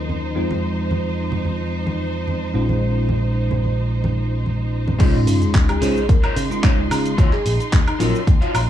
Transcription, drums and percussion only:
0.09 high conga medium
0.51 high conga medium
0.91 high conga medium
1.32 low conga medium
1.45 high conga medium
1.87 high conga medium
2.28 high conga medium
2.69 high conga medium
3.09 high conga medium
3.51 low conga medium
3.64 high conga medium
4.04 high conga medium
4.46 high conga medium
4.88 high conga medium
5.00 kick loud
5.00 closed hi-hat medium
5.00 crash loud
5.00 shaker soft
5.27 open hi-hat loud
5.27 shaker medium
5.42 closed hi-hat soft
5.42 shaker soft
5.55 kick loud
5.55 clap loud
5.55 closed hi-hat medium
5.55 shaker soft
5.69 closed hi-hat medium
5.69 high woodblock medium
5.82 open hi-hat loud
5.82 shaker medium
5.97 shaker soft
6.09 kick loud
6.09 closed hi-hat medium
6.09 shaker soft
6.24 closed hi-hat soft
6.24 high woodblock medium
6.36 open hi-hat loud
6.36 shaker medium
6.52 shaker soft
6.64 kick loud
6.64 clap loud
6.64 closed hi-hat medium
6.64 shaker soft
6.91 open hi-hat loud
6.91 high woodblock medium
6.91 shaker medium
7.06 closed hi-hat medium
7.06 shaker soft
7.18 kick loud
7.18 closed hi-hat medium
7.18 shaker soft
7.33 clap soft
7.46 open hi-hat loud
7.46 shaker medium
7.60 closed hi-hat soft
7.60 shaker soft
7.73 kick loud
7.73 clap loud
7.73 closed hi-hat medium
7.73 shaker soft
7.87 closed hi-hat medium
7.87 high woodblock medium
8.00 open hi-hat loud
8.00 shaker medium
8.15 shaker soft
8.27 kick loud
8.27 closed hi-hat medium
8.27 shaker soft
8.42 closed hi-hat soft
8.55 open hi-hat loud
8.55 high woodblock medium
8.55 shaker medium

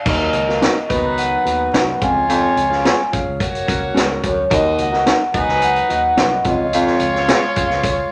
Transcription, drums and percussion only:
0.06 kick loud
0.06 crash loud
0.33 closed hi-hat medium
0.49 snare soft
0.62 snare loud
0.62 closed hi-hat medium
0.90 kick loud
0.90 closed hi-hat medium
1.18 closed hi-hat medium
1.46 closed hi-hat medium
1.74 snare loud
1.74 closed hi-hat loud
2.02 kick loud
2.02 closed hi-hat medium
2.30 closed hi-hat medium
2.57 closed hi-hat medium
2.72 snare soft
2.85 snare loud
2.85 closed hi-hat medium
3.13 kick medium
3.13 closed hi-hat medium
3.40 kick medium
3.40 closed hi-hat medium
3.55 closed hi-hat soft
3.68 kick medium
3.68 closed hi-hat medium
3.97 snare loud
3.97 closed hi-hat loud
4.23 kick medium
4.23 closed hi-hat medium
4.51 kick loud
4.51 closed hi-hat medium
4.78 closed hi-hat medium
4.93 snare soft
5.07 snare loud
5.07 closed hi-hat loud
5.34 kick loud
5.34 closed hi-hat medium
5.48 snare soft
5.62 closed hi-hat medium
5.76 closed hi-hat soft
5.90 closed hi-hat medium
6.17 snare loud
6.17 closed hi-hat loud
6.44 kick medium
6.44 closed hi-hat medium
6.73 closed hi-hat medium
6.87 snare soft
7.00 closed hi-hat medium
7.15 snare soft
7.28 snare loud
7.28 closed hi-hat loud
7.56 kick medium
7.56 closed hi-hat medium
7.70 snare soft
7.84 kick medium
7.84 closed hi-hat medium

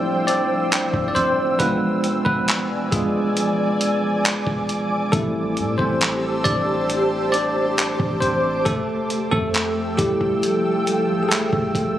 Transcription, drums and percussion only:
0.28 closed hi-hat medium
0.72 clap loud
0.72 closed hi-hat medium
0.94 kick medium
1.16 closed hi-hat soft
1.60 kick loud
1.60 closed hi-hat medium
2.04 closed hi-hat medium
2.26 kick medium
2.48 clap loud
2.48 closed hi-hat medium
2.92 kick medium
2.92 closed hi-hat medium
3.37 closed hi-hat medium
3.81 closed hi-hat medium
4.25 clap loud
4.25 closed hi-hat medium
4.47 kick medium
4.69 closed hi-hat soft
5.13 kick loud
5.13 closed hi-hat medium
5.57 closed hi-hat medium
5.79 kick medium
6.01 clap loud
6.01 closed hi-hat medium
6.45 kick medium
6.45 closed hi-hat medium
6.90 closed hi-hat medium
7.34 closed hi-hat medium
7.78 clap loud
7.78 closed hi-hat medium
8.00 kick medium
8.22 closed hi-hat soft
8.66 kick loud
8.66 closed hi-hat medium
9.10 closed hi-hat medium
9.32 kick medium
9.54 clap loud
9.54 closed hi-hat medium
9.98 kick medium
9.98 closed hi-hat medium
10.21 kick medium
10.43 closed hi-hat medium
10.87 closed hi-hat medium
11.31 clap loud
11.31 closed hi-hat medium
11.53 kick medium
11.75 kick medium
11.75 closed hi-hat soft

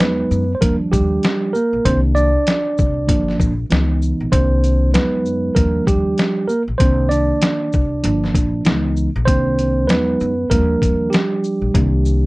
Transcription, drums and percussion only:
0.00 snare loud
0.31 shaker soft
0.62 kick loud
0.62 closed hi-hat medium
0.93 kick medium
0.93 closed hi-hat medium
0.93 shaker soft
1.23 snare loud
1.23 closed hi-hat medium
1.55 shaker soft
1.85 kick medium
1.85 closed hi-hat medium
2.16 shaker medium
2.47 snare loud
2.47 closed hi-hat medium
2.78 kick medium
2.78 shaker soft
3.09 kick medium
3.09 closed hi-hat medium
3.28 snare soft
3.40 kick medium
3.40 shaker medium
3.71 snare loud
3.71 closed hi-hat medium
4.02 shaker medium
4.32 kick loud
4.32 closed hi-hat medium
4.64 closed hi-hat soft
4.64 shaker medium
4.94 snare loud
4.94 closed hi-hat medium
5.26 shaker soft
5.56 kick medium
5.56 closed hi-hat medium
5.87 kick medium
5.87 closed hi-hat medium
5.87 shaker soft
6.18 snare loud
6.18 closed hi-hat medium
6.49 shaker medium
6.80 kick loud
6.80 closed hi-hat medium
7.11 closed hi-hat medium
7.11 shaker soft
7.42 snare loud
7.42 closed hi-hat medium
7.73 kick medium
7.73 shaker soft
8.04 closed hi-hat medium
8.24 snare soft
8.35 kick medium
8.35 closed hi-hat medium
8.35 shaker medium
8.65 snare loud
8.65 closed hi-hat medium
8.96 shaker medium
9.27 kick loud
9.27 closed hi-hat medium
9.59 closed hi-hat medium
9.59 shaker medium
9.89 snare loud
9.89 closed hi-hat medium
10.20 shaker soft
10.51 kick medium
10.51 closed hi-hat loud
10.82 kick medium
10.82 closed hi-hat soft
10.82 shaker soft
11.13 snare loud
11.13 closed hi-hat medium
11.44 shaker soft
11.74 kick loud
11.74 closed hi-hat medium
12.05 shaker medium

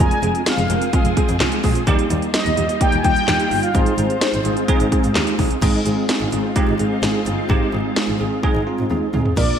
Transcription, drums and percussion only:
0.00 kick loud
0.11 closed hi-hat soft
0.23 closed hi-hat medium
0.35 closed hi-hat soft
0.46 snare loud
0.46 closed hi-hat medium
0.58 closed hi-hat medium
0.70 closed hi-hat medium
0.82 closed hi-hat medium
0.93 kick loud
0.93 closed hi-hat medium
1.05 closed hi-hat soft
1.17 kick medium
1.17 closed hi-hat medium
1.29 closed hi-hat soft
1.40 snare loud
1.40 clap medium
1.40 closed hi-hat medium
1.52 closed hi-hat medium
1.64 kick medium
1.64 open hi-hat medium
1.75 closed hi-hat medium
1.87 kick loud
1.87 closed hi-hat medium
1.99 closed hi-hat medium
2.10 closed hi-hat medium
2.22 closed hi-hat medium
2.34 snare loud
2.34 closed hi-hat medium
2.46 closed hi-hat medium
2.57 closed hi-hat medium
2.69 closed hi-hat medium
2.81 kick loud
2.81 closed hi-hat medium
2.92 closed hi-hat medium
3.04 kick medium
3.04 closed hi-hat medium
3.16 closed hi-hat soft
3.28 snare loud
3.28 clap medium
3.28 closed hi-hat medium
3.40 closed hi-hat medium
3.51 open hi-hat medium
3.63 closed hi-hat medium
3.75 kick loud
3.75 closed hi-hat medium
3.86 closed hi-hat medium
3.98 closed hi-hat medium
4.10 closed hi-hat soft
4.21 snare loud
4.21 closed hi-hat medium
4.33 closed hi-hat medium
4.45 closed hi-hat medium
4.57 closed hi-hat medium
4.68 kick loud
4.68 closed hi-hat medium
4.80 closed hi-hat medium
4.92 kick medium
4.92 closed hi-hat medium
5.04 closed hi-hat soft
5.15 snare loud
5.15 clap medium
5.15 closed hi-hat medium
5.27 closed hi-hat medium
5.39 kick medium
5.39 open hi-hat medium
5.51 closed hi-hat medium
5.62 kick loud
5.62 closed hi-hat medium
5.62 crash medium
5.86 closed hi-hat medium
6.09 snare loud
6.09 closed hi-hat medium
6.32 closed hi-hat medium
6.56 kick loud
6.56 closed hi-hat medium
6.79 closed hi-hat medium
7.03 snare loud
7.03 closed hi-hat medium
7.26 closed hi-hat medium
7.50 kick loud
7.96 snare loud
8.43 kick loud
8.90 high tom medium
9.14 mid tom medium
9.25 floor tom medium
9.37 kick loud
9.37 crash medium

